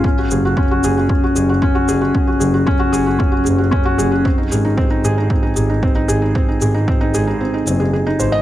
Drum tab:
SH |-x-x-x-x|-x-x-x-x|-x-x-x-x|-x-x-x-x|
BD |o-o-o-o-|o-o-o-o-|o-o-o-o-|o-o-----|